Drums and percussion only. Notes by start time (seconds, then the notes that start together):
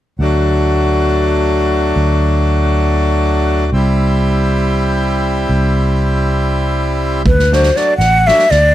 7.26 kick
7.39 snare
7.52 snare
7.63 snare
7.76 snare
8.00 snare
8.28 snare
8.39 snare
8.51 snare